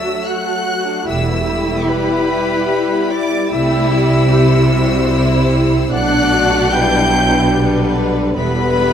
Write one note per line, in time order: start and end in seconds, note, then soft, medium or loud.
0.00 1.03 F#3 medium
0.00 1.89 A3 medium
0.00 1.03 F#4 medium
0.00 1.04 F#4 medium
0.00 0.28 E5 medium
0.00 0.26 E6 medium
0.06 0.27 D4 medium
0.26 0.46 F#4 medium
0.26 1.05 F#5 medium
0.26 1.07 F#6 loud
0.46 0.66 A4 medium
0.65 0.86 F#4 medium
0.86 1.07 D4 medium
1.05 1.75 E1 medium
1.05 1.75 E2 medium
1.05 3.46 G3 medium
1.05 1.26 G3 medium
1.05 5.75 E4 medium
1.05 3.46 E4 medium
1.05 3.50 G4 medium
1.05 1.90 E5 medium
1.05 1.87 E6 medium
1.28 1.48 B3 medium
1.48 1.69 E4 medium
1.69 1.89 B3 medium
1.87 5.75 G3 medium
1.87 2.10 G3 medium
1.87 3.13 B4 loud
1.87 3.10 B5 medium
2.10 2.30 B3 medium
2.30 2.50 E4 medium
2.52 2.71 B3 medium
2.71 2.91 G3 medium
2.92 3.11 B3 medium
3.10 3.31 E4 medium
3.10 3.51 D5 medium
3.10 3.50 D6 loud
3.32 3.51 B3 medium
3.50 5.88 C2 medium
3.50 5.87 C3 medium
3.50 3.88 A3 medium
3.50 4.26 E4 medium
3.50 5.08 E4 medium
3.50 4.27 G4 medium
3.50 5.61 E5 medium
3.50 5.91 E6 medium
3.90 4.30 G3 medium
4.31 5.89 G3 medium
4.31 4.71 G4 medium
4.31 5.93 C5 medium
4.70 5.10 F#4 medium
5.11 5.92 E4 medium
5.11 5.51 E4 medium
5.52 5.92 C4 medium
5.91 8.36 B1 medium
5.91 8.35 B2 medium
5.91 8.93 D3 medium
5.91 6.71 A3 medium
5.91 6.31 D4 medium
5.91 7.54 D4 loud
5.91 8.36 D4 medium
5.91 6.71 D5 medium
5.91 6.74 F#5 loud
5.91 6.71 F#6 loud
6.31 6.72 F#4 medium
6.71 7.14 G3 medium
6.71 7.54 E4 medium
6.71 7.53 B4 medium
6.71 7.95 G5 loud
6.71 7.94 G6 loud
7.13 7.54 F#3 medium
7.53 8.34 G3 medium
7.53 8.36 B3 medium
7.53 8.36 D4 medium
7.53 8.34 B4 medium
8.35 8.93 E1 loud
8.35 8.93 E2 medium
8.35 8.93 G3 medium
8.35 8.93 B3 medium
8.35 8.93 E4 medium
8.35 8.93 B4 medium
8.35 8.93 B4 loud
8.35 8.93 B5 loud